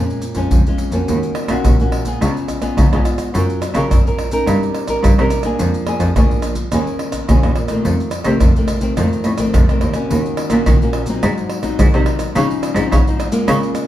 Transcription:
Already playing: A#2 G#3 C#4 F4
0.10 pandeiro, maracas
0.22 pandeiro, maracas
0.35 F2 G#3 C#4 F4, pandeiro, maracas, surdo
0.51 F2, pandeiro, maracas, surdo
0.66 G#3 C#4 F4, pandeiro, maracas
0.78 pandeiro, maracas
0.92 F2 A#3 C#4 F#4, pandeiro, maracas
1.08 D#2 D#3, pandeiro, maracas, surdo
1.23 pandeiro, maracas
1.35 pandeiro, tamborim
1.48 A#2 A#3 C#4 F#4, pandeiro, tamborim, maracas, surdo
1.65 D#2 A#2, pandeiro, tamborim, maracas, surdo
1.80 A#3 C#4 F#4, pandeiro, maracas
1.92 pandeiro, tamborim
2.05 B3 F4 G#4, pandeiro, maracas, surdo
2.22 C#2 C#3, pandeiro, tamborim, maracas, surdo
2.37 pandeiro, maracas
2.48 pandeiro, tamborim, maracas, surdo
2.61 B3 F4 G#4, pandeiro, tamborim, maracas, surdo
2.78 C#2 G#2, pandeiro, tamborim, maracas, surdo
2.93 C#2 B3 F4 G#4, pandeiro, tamborim, maracas
3.05 pandeiro, tamborim, maracas
3.18 pandeiro, tamborim, maracas, surdo
3.34 F#2 F#3 C#4 F4 A#4, pandeiro, maracas, surdo
3.50 pandeiro, maracas
3.62 pandeiro, tamborim, maracas
3.74 C#3 C#4 F4 A#4, pandeiro, tamborim, maracas, surdo
3.90 F#2 C#3, pandeiro, tamborim, maracas, surdo
4.07 C#4 F4 A#4, pandeiro, maracas
4.19 pandeiro, tamborim
4.31 C#4 D#4 A#4, pandeiro, maracas, surdo
4.47 G2 G3, pandeiro, tamborim, maracas, surdo
4.63 pandeiro, maracas
4.74 pandeiro, tamborim
4.88 C#4 D#4 A#4, pandeiro, tamborim, maracas, surdo
5.03 G2 G3, pandeiro, tamborim, maracas, surdo
5.19 C3 C#4 D#4 A#4, pandeiro, tamborim, maracas
5.30 pandeiro, tamborim, maracas
5.43 A#3 D4 G#4, pandeiro, tamborim, maracas, surdo
5.59 F2 F3, pandeiro, maracas, surdo
5.74 pandeiro, maracas
5.87 A#3 D4 G#4, pandeiro, tamborim
6.00 F2, pandeiro, tamborim, maracas, surdo
6.16 D2 F3 A#3 D4 G#4, pandeiro, tamborim, maracas, surdo
6.31 pandeiro, maracas
6.42 pandeiro, tamborim, maracas
6.55 pandeiro, maracas, surdo
6.72 D#2 D#3 A#3 C#4 G#4, pandeiro, tamborim, maracas, surdo
6.87 pandeiro, maracas
6.99 pandeiro, tamborim
7.12 pandeiro, tamborim, maracas, surdo
7.29 D#2 A#2 A#3 C#4 G#4, pandeiro, tamborim, maracas, surdo
7.43 D#2, pandeiro, tamborim, maracas
7.56 pandeiro, tamborim
7.68 D#3 A3 C4, pandeiro, tamborim, maracas, surdo
7.85 F2, pandeiro, maracas, surdo
8.00 pandeiro, maracas
8.11 pandeiro, tamborim, maracas
8.24 C3 D#3 A3 C4, pandeiro, tamborim, maracas, surdo
8.40 F2 C3, pandeiro, tamborim, maracas, surdo
8.56 D#3 A3 C4, pandeiro, maracas
8.68 pandeiro, tamborim, maracas
8.81 D#3 A3 C4, pandeiro, maracas, surdo
8.97 F2 D#3 A3 C4, pandeiro, tamborim, maracas, surdo
9.13 pandeiro, maracas
9.24 A2, pandeiro, tamborim, maracas
9.38 D#3 A3 C4, pandeiro, tamborim, maracas, surdo
9.54 F2 C3, pandeiro, tamborim, maracas, surdo
9.69 D#3 A3 C4, pandeiro, tamborim, maracas
9.81 D#2, pandeiro, tamborim
9.94 A#3 C#4 F#4, pandeiro, tamborim, maracas, surdo
10.11 D#2 D#3, pandeiro, maracas, surdo
10.26 pandeiro, maracas
10.37 pandeiro, tamborim
10.50 A#2 A#3 C#4 F#4, pandeiro, tamborim, maracas, surdo
10.66 A#2 D#3, pandeiro, tamborim, maracas, surdo
10.82 A#3 C#4 F#4, pandeiro, maracas
10.93 pandeiro, tamborim
11.06 F#3 C4 D#4, pandeiro, maracas, surdo
11.23 G#2, pandeiro, tamborim, maracas, surdo
11.38 pandeiro, maracas
11.49 pandeiro, tamborim
11.63 F#3 C4 D#4, pandeiro, tamborim, maracas, surdo
11.79 G#2 D#3, pandeiro, tamborim, maracas, surdo
11.94 C3 F#3 C4 D#4, pandeiro, tamborim, maracas
12.06 pandeiro, tamborim
12.19 pandeiro, tamborim, maracas, surdo
12.35 C#3 F3 C4 D#4, pandeiro, maracas, surdo
12.51 pandeiro, maracas
12.63 pandeiro, tamborim, maracas
12.75 G#2 F3 C4 D#4, pandeiro, tamborim, maracas, surdo
12.92 G#2 C#3, pandeiro, tamborim, maracas, surdo
13.07 F3 C4 D#4, pandeiro, maracas
13.20 pandeiro, tamborim, maracas
13.32 G#3 A#3 F4, pandeiro, maracas, surdo
13.48 C#3, pandeiro, tamborim, maracas, surdo
13.63 pandeiro, maracas
13.75 pandeiro, tamborim, maracas

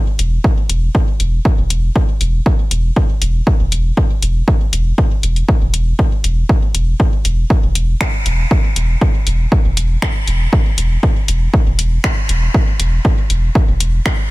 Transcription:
0.19 E1, closed hi-hat
0.44 kick
0.69 E1, closed hi-hat
0.95 kick
1.20 E1, closed hi-hat
1.45 kick
1.58 E1
1.70 E1, closed hi-hat
1.96 kick
2.21 E1, closed hi-hat
2.46 kick
2.71 E1, closed hi-hat
2.96 kick
3.22 E1, closed hi-hat
3.47 kick
3.60 E1
3.72 E1, closed hi-hat
3.97 kick
4.22 E1, closed hi-hat
4.48 kick
4.73 E1, closed hi-hat
4.98 kick
5.23 E1, closed hi-hat
5.36 closed hi-hat
5.49 kick
5.62 E1
5.74 E1, closed hi-hat
5.99 kick
6.24 E1, closed hi-hat
6.49 kick
6.75 E1, closed hi-hat
7.00 kick
7.25 E1, closed hi-hat
7.50 kick
7.63 E1
7.75 E1, closed hi-hat
8.01 finger snap, kick
8.26 E1, closed hi-hat
8.51 kick
8.76 E1, closed hi-hat
9.01 kick
9.27 E1, closed hi-hat
9.52 kick
9.65 E1
9.77 E1, closed hi-hat
10.02 finger snap, kick
10.27 E1, closed hi-hat
10.53 kick
10.78 E1, closed hi-hat
11.03 kick
11.28 E1, closed hi-hat
11.54 kick
11.67 E1
11.79 E1, closed hi-hat
12.04 finger snap, kick
12.29 E1, closed hi-hat
12.54 kick
12.80 E1, closed hi-hat
13.05 kick
13.30 E1, closed hi-hat
13.55 kick
13.68 E1
13.80 E1, closed hi-hat
14.06 finger snap, kick

